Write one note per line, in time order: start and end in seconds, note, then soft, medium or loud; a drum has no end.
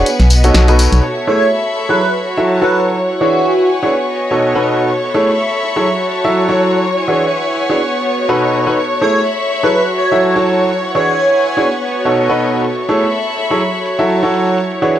0.00 0.46 B4 medium
0.00 0.46 F#5 medium
0.00 0.46 G#5 medium
0.06 1.43 B3 medium
0.06 closed hi-hat medium
0.06 tambourine soft
0.19 0.51 B1 loud
0.19 snare soft
0.19 closed hi-hat soft
0.19 tambourine soft
0.30 1.03 D#5 medium
0.30 open hi-hat loud
0.30 tambourine medium
0.36 1.43 F#4 medium
0.44 0.65 B2 medium
0.44 0.65 D#4 medium
0.44 0.65 F#4 medium
0.44 0.65 A4 medium
0.44 0.65 C#5 medium
0.44 closed hi-hat medium
0.44 tambourine soft
0.48 1.43 C#5 medium
0.54 0.88 B1 medium
0.54 snare loud
0.54 closed hi-hat medium
0.54 tambourine medium
0.68 1.02 B2 medium
0.68 1.02 D#4 medium
0.68 1.02 F#4 medium
0.68 1.02 A4 medium
0.68 1.02 B4 loud
0.68 closed hi-hat soft
0.68 tambourine soft
0.79 open hi-hat loud
0.79 tambourine medium
0.92 1.01 B1 medium
0.92 closed hi-hat medium
0.92 tambourine soft
1.03 2.40 A4 medium
1.03 14.99 C#5 medium
1.03 14.99 C#6 medium
1.14 2.40 E5 medium
1.27 1.43 A3 medium
1.27 1.43 E4 medium
1.27 1.43 G#4 medium
1.27 1.43 A4 medium
1.27 1.43 C#5 medium
1.27 1.47 C#5 medium
1.40 2.40 C#6 medium
1.48 2.40 B5 medium
1.89 1.99 F#3 medium
1.89 1.99 E4 medium
1.89 1.99 G#4 medium
1.89 1.99 A4 medium
1.89 1.96 B4 medium
1.89 1.99 C#5 medium
2.00 3.37 F#4 medium
2.00 2.09 B4 medium
2.05 3.37 C#5 medium
2.24 closed hi-hat medium
2.38 2.59 F#3 medium
2.38 2.59 E4 medium
2.38 2.59 F#4 medium
2.38 2.59 A4 medium
2.38 2.59 E5 medium
2.44 2.97 A5 medium
2.62 2.95 F#3 medium
2.62 2.95 E4 medium
2.62 2.95 F#4 medium
2.62 2.95 A4 medium
2.62 2.80 B4 medium
2.62 2.95 C#5 medium
2.96 3.93 E4 medium
3.04 4.33 F#5 medium
3.21 3.37 E3 medium
3.21 3.37 D4 medium
3.21 3.37 E4 medium
3.21 3.69 F#4 medium
3.21 3.37 F#4 medium
3.21 3.37 G#4 medium
3.21 3.37 C#5 medium
3.26 4.33 B4 medium
3.40 4.33 G#5 medium
3.45 closed hi-hat medium
3.83 3.92 D4 medium
3.83 3.92 E4 medium
3.83 3.92 F#4 medium
3.83 3.92 G#4 medium
3.83 3.92 C#5 medium
3.93 5.30 B3 medium
4.08 5.30 C#5 medium
4.08 4.90 D#5 medium
4.13 5.30 F#4 medium
4.31 4.52 B2 medium
4.31 4.52 D#4 medium
4.31 4.52 F#4 medium
4.31 4.52 A4 medium
4.31 4.52 C#5 medium
4.55 4.89 B2 medium
4.55 4.89 D#4 medium
4.55 4.89 F#4 medium
4.55 4.89 A4 medium
4.55 4.89 B4 medium
4.90 6.27 A4 medium
4.90 closed hi-hat medium
5.07 6.27 E5 medium
5.07 6.27 B5 medium
5.14 5.30 A3 medium
5.14 5.30 E4 medium
5.14 5.30 G#4 medium
5.14 5.30 A4 medium
5.14 5.30 C#5 medium
5.14 closed hi-hat medium
5.35 6.27 C#6 medium
5.63 closed hi-hat medium
5.76 5.86 F#3 medium
5.76 5.86 E4 medium
5.76 5.86 G#4 medium
5.76 5.86 A4 medium
5.76 5.86 C#5 medium
5.87 7.24 F#4 medium
5.99 7.24 C#5 medium
5.99 6.84 A5 medium
6.24 6.46 F#3 medium
6.24 6.46 E4 medium
6.24 6.46 F#4 medium
6.24 6.46 A4 medium
6.24 6.46 E5 medium
6.35 closed hi-hat medium
6.49 6.82 F#3 medium
6.49 6.82 E4 medium
6.49 6.82 F#4 medium
6.49 6.82 A4 medium
6.49 6.82 C#5 loud
6.60 closed hi-hat medium
6.84 7.81 E4 medium
6.84 closed hi-hat medium
6.95 8.20 G#5 medium
7.07 7.24 E3 medium
7.07 7.24 D4 medium
7.07 7.24 E4 medium
7.07 7.24 F#4 medium
7.07 7.24 G#4 medium
7.07 8.20 B4 medium
7.07 7.24 C#5 medium
7.28 8.21 F#5 medium
7.28 closed hi-hat medium
7.56 closed hi-hat medium
7.70 7.79 D4 medium
7.70 7.79 E4 medium
7.70 7.79 F#4 medium
7.70 7.79 G#4 medium
7.70 7.79 C#5 medium
7.81 9.17 B3 medium
8.01 9.17 F#4 medium
8.01 closed hi-hat medium
8.18 closed hi-hat soft
8.25 8.63 B2 medium
8.25 8.63 F#4 medium
8.25 8.63 A4 medium
8.25 9.17 C#5 medium
8.25 8.77 D#5 medium
8.29 8.63 D#4 medium
8.29 8.63 B4 medium
8.29 closed hi-hat medium
8.53 closed hi-hat medium
8.66 8.76 D#4 medium
8.66 8.76 F#4 medium
8.66 8.76 A4 medium
8.66 8.76 B4 medium
8.77 10.14 A4 medium
8.77 closed hi-hat medium
8.91 closed hi-hat soft
8.98 9.18 A3 medium
8.98 9.18 E4 medium
8.98 9.18 G#4 medium
8.98 9.18 A4 medium
8.98 9.21 C#5 medium
8.98 9.18 C#5 medium
8.98 10.14 E5 medium
8.98 closed hi-hat medium
9.15 closed hi-hat soft
9.21 10.14 B5 medium
9.21 10.14 C#6 medium
9.26 closed hi-hat medium
9.50 closed hi-hat medium
9.50 cabasa medium
9.63 9.73 F#3 medium
9.63 9.73 E4 medium
9.63 9.73 G#4 medium
9.63 9.73 A4 medium
9.63 9.70 B4 medium
9.63 9.73 C#5 medium
9.74 11.11 F#4 medium
9.74 9.83 B4 medium
9.74 closed hi-hat medium
9.98 10.36 C#5 medium
9.98 11.11 C#5 medium
9.98 closed hi-hat medium
9.98 cabasa medium
10.12 10.33 F#3 medium
10.12 10.33 E4 medium
10.12 10.33 F#4 medium
10.12 10.33 A4 medium
10.12 10.33 E5 medium
10.12 closed hi-hat soft
10.18 10.71 A5 medium
10.22 closed hi-hat medium
10.36 10.70 F#3 medium
10.36 10.70 E4 medium
10.36 10.70 F#4 medium
10.36 10.70 A4 medium
10.36 10.70 C#5 loud
10.36 closed hi-hat soft
10.47 closed hi-hat medium
10.47 cabasa medium
10.60 closed hi-hat soft
10.71 11.68 E4 medium
10.71 closed hi-hat medium
10.82 12.08 F#5 medium
10.82 closed hi-hat soft
10.90 12.08 B4 medium
10.95 11.11 E3 medium
10.95 11.11 D4 medium
10.95 11.11 E4 medium
10.95 11.11 F#4 medium
10.95 11.11 G#4 medium
10.95 11.63 C#5 medium
10.95 11.11 C#5 medium
10.95 closed hi-hat medium
11.08 closed hi-hat soft
11.15 12.08 G#5 medium
11.19 closed hi-hat medium
11.33 closed hi-hat soft
11.43 closed hi-hat medium
11.43 cabasa medium
11.57 11.66 D4 medium
11.57 11.66 E4 medium
11.57 11.66 F#4 medium
11.57 11.66 G#4 medium
11.57 11.66 C#5 medium
11.57 closed hi-hat soft
11.68 13.04 B3 medium
11.68 closed hi-hat medium
11.83 13.04 C#5 medium
11.88 13.04 F#4 medium
11.88 closed hi-hat medium
11.93 cabasa medium
12.05 12.26 B2 medium
12.05 12.26 D#4 medium
12.05 12.26 F#4 medium
12.05 12.26 A4 medium
12.05 12.26 C#5 medium
12.05 closed hi-hat soft
12.12 12.64 D#5 medium
12.16 closed hi-hat medium
12.16 cabasa soft
12.29 12.63 B2 medium
12.29 12.63 D#4 medium
12.29 12.63 F#4 medium
12.29 12.63 A4 medium
12.29 12.63 B4 medium
12.29 closed hi-hat soft
12.40 closed hi-hat medium
12.40 cabasa medium
12.54 closed hi-hat soft
12.64 14.01 A4 medium
12.64 closed hi-hat medium
12.64 cabasa soft
12.78 14.01 E5 medium
12.78 closed hi-hat soft
12.88 13.05 A3 medium
12.88 13.05 E4 medium
12.88 13.05 G#4 medium
12.88 13.05 A4 medium
12.88 13.05 C#5 medium
12.88 14.01 C#6 medium
12.88 closed hi-hat medium
12.88 cabasa medium
12.95 14.01 B5 medium
13.02 closed hi-hat medium
13.13 closed hi-hat medium
13.13 cabasa soft
13.26 closed hi-hat soft
13.37 closed hi-hat medium
13.37 cabasa medium
13.50 13.60 F#3 medium
13.50 13.60 E4 medium
13.50 13.60 G#4 medium
13.50 13.60 A4 medium
13.50 13.60 C#5 medium
13.50 closed hi-hat soft
13.61 14.98 F#4 medium
13.61 closed hi-hat medium
13.69 14.98 C#5 medium
13.75 cabasa soft
13.85 closed hi-hat medium
13.85 cabasa medium
13.99 14.20 F#3 medium
13.99 14.20 E4 medium
13.99 14.20 F#4 medium
13.99 14.20 A4 medium
13.99 14.20 E5 medium
13.99 closed hi-hat soft
14.05 14.58 A5 medium
14.10 closed hi-hat medium
14.10 cabasa soft
14.23 14.57 F#3 medium
14.23 14.57 E4 medium
14.23 14.57 F#4 medium
14.23 14.57 A4 medium
14.23 14.57 C#5 loud
14.23 closed hi-hat soft
14.34 closed hi-hat medium
14.34 cabasa medium
14.47 closed hi-hat soft
14.47 cabasa soft
14.58 14.99 E4 medium
14.58 closed hi-hat medium
14.58 cabasa soft
14.72 closed hi-hat soft
14.72 cabasa soft
14.82 14.98 E3 medium
14.82 14.98 D4 medium
14.82 14.98 E4 medium
14.82 14.98 F#4 medium
14.82 14.98 G#4 medium
14.82 14.99 B4 medium
14.82 14.98 C#5 medium
14.82 closed hi-hat medium
14.82 cabasa medium
14.96 closed hi-hat medium